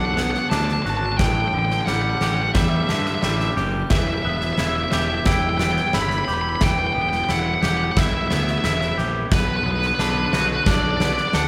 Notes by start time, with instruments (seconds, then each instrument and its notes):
Already playing: picked electric bass B1, clean electric guitar B2 B3 D4 F#4, ambient pad D3 B3 D4 F#4
0.05 lead electric guitar F#5
0.14 clean electric guitar B3, lead electric guitar F#5, snare
0.22 lead electric guitar F#5
0.31 lead electric guitar F#5, snare
0.39 lead electric guitar F#5
0.50 picked electric bass D2, clean electric guitar D4, lead electric guitar A5, snare
0.56 lead electric guitar A5
0.65 lead electric guitar A5, snare
0.73 lead electric guitar A5
0.82 picked electric bass G#1, clean electric guitar F#4, lead electric guitar A5, snare
0.90 lead electric guitar A5
0.97 lead electric guitar A5
1.06 lead electric guitar A5
1.12 lead electric guitar A5
1.17 picked electric bass A1, clean electric guitar A2, ambient pad E3 A3 D4 G4, lead electric guitar G5, kick, snare
1.26 lead electric guitar G5
1.33 lead electric guitar G5
1.41 lead electric guitar G5
1.48 lead electric guitar G5
1.54 picked electric bass A1, clean electric guitar D3
1.58 lead electric guitar G5
1.65 lead electric guitar G5
1.71 lead electric guitar G5, snare
1.81 lead electric guitar G5
1.86 picked electric bass A1, clean electric guitar G3, lead electric guitar F#5, snare
1.93 lead electric guitar F#5
2.02 lead electric guitar F#5
2.10 lead electric guitar F#5
2.18 picked electric bass A1, lead electric guitar F#5, snare
2.22 clean electric guitar G4
2.27 lead electric guitar F#5
2.35 lead electric guitar F#5
2.42 lead electric guitar F#5
2.54 picked electric bass E2, clean electric guitar G3, lead electric guitar E5, kick, snare
2.61 lead electric guitar E5
2.69 lead electric guitar E5
2.77 lead electric guitar E5
2.84 lead electric guitar E5
2.89 picked electric bass G2, clean electric guitar D3, lead electric guitar E5, snare
2.99 lead electric guitar E5
3.06 lead electric guitar E5, snare
3.15 lead electric guitar E5
3.22 picked electric bass A1, clean electric guitar G3, lead electric guitar E5, snare
3.30 lead electric guitar E5
3.38 lead electric guitar E5, snare
3.44 lead electric guitar E5
3.57 picked electric bass F#1, clean electric guitar G4, snare
3.90 picked electric bass E1, clean electric guitar E3, ambient pad G3 B3, lead electric guitar E5, kick, snare
3.98 lead electric guitar E5
4.08 lead electric guitar E5
4.14 lead electric guitar E5
4.22 picked electric bass E1, clean electric guitar B3, lead electric guitar E5
4.30 lead electric guitar E5
4.37 lead electric guitar E5, snare
4.44 lead electric guitar E5
4.53 lead electric guitar E5
4.58 picked electric bass E1, clean electric guitar E4, lead electric guitar E5, snare
4.67 lead electric guitar E5
4.76 lead electric guitar E5
4.84 lead electric guitar E5
4.91 picked electric bass E1, clean electric guitar G4, lead electric guitar E5, snare
4.99 lead electric guitar E5
5.08 lead electric guitar E5
5.15 lead electric guitar E5
5.26 picked electric bass E1, clean electric guitar E4, lead electric guitar G5, kick, snare
5.33 lead electric guitar G5
5.43 lead electric guitar G5
5.49 lead electric guitar G5
5.58 clean electric guitar B3, lead electric guitar G5, snare
5.64 lead electric guitar G5
5.72 lead electric guitar G5
5.77 snare
5.81 lead electric guitar G5
5.88 lead electric guitar G5
5.93 picked electric bass G1, clean electric guitar E4, lead electric guitar B5, snare
6.02 lead electric guitar B5
6.09 lead electric guitar B5, snare
6.18 lead electric guitar B5
6.25 picked electric bass E1, clean electric guitar G4, lead electric guitar B5, snare
6.34 lead electric guitar B5
6.41 lead electric guitar B5
6.49 lead electric guitar B5
6.55 lead electric guitar B5
6.60 picked electric bass E1, clean electric guitar E3, ambient pad E4, lead electric guitar G5, kick, snare
6.71 lead electric guitar G5
6.79 lead electric guitar G5
6.87 lead electric guitar G5
6.93 picked electric bass E1, clean electric guitar B3, lead electric guitar G5
7.02 lead electric guitar G5
7.09 lead electric guitar G5, snare
7.17 lead electric guitar G5
7.24 lead electric guitar G5
7.29 picked electric bass E1, clean electric guitar E4, lead electric guitar F#5, snare
7.40 lead electric guitar F#5
7.47 lead electric guitar F#5
7.54 lead electric guitar F#5
7.62 picked electric bass E1, clean electric guitar G4, lead electric guitar F#5, snare
7.69 lead electric guitar F#5
7.77 lead electric guitar F#5
7.84 lead electric guitar F#5
7.92 lead electric guitar F#5
7.97 picked electric bass B1, clean electric guitar E4, lead electric guitar E5, kick, snare
8.07 lead electric guitar E5
8.14 lead electric guitar E5
8.21 lead electric guitar E5
8.28 picked electric bass D2, clean electric guitar B3, lead electric guitar E5, snare
8.36 lead electric guitar E5
8.43 lead electric guitar E5
8.47 lead electric guitar E5, snare
8.58 lead electric guitar E5
8.64 picked electric bass E1, clean electric guitar E4, lead electric guitar E5, snare
8.73 lead electric guitar E5
8.81 lead electric guitar E5, snare
8.88 lead electric guitar E5
8.98 picked electric bass A#1, clean electric guitar G4, snare
9.32 picked electric bass B1, clean electric guitar B2, ambient pad D3 D4, lead electric guitar B4, kick, snare
9.40 lead electric guitar B4
9.49 lead electric guitar B4
9.56 lead electric guitar B4
9.64 picked electric bass B1, clean electric guitar B3, lead electric guitar B4
9.71 lead electric guitar B4
9.79 lead electric guitar B4, snare
9.87 lead electric guitar B4
9.95 lead electric guitar B4
9.99 picked electric bass B1, clean electric guitar D4, lead electric guitar B4, snare
10.10 lead electric guitar B4
10.18 lead electric guitar B4
10.26 lead electric guitar B4
10.32 picked electric bass B1, clean electric guitar F#4, lead electric guitar B4, snare
10.41 lead electric guitar B4
10.49 lead electric guitar B4
10.57 lead electric guitar B4
10.64 picked electric bass B1, clean electric guitar D4, lead electric guitar B4 D5, kick, snare
10.74 lead electric guitar D5
10.82 lead electric guitar D5
10.91 lead electric guitar D5
10.97 lead electric guitar D5, snare
11.01 clean electric guitar B3, lead electric guitar D5
11.13 lead electric guitar D5
11.17 snare
11.21 lead electric guitar D5
11.28 lead electric guitar D5
11.33 picked electric bass D2, clean electric guitar D4, lead electric guitar F#5, snare
11.42 lead electric guitar F#5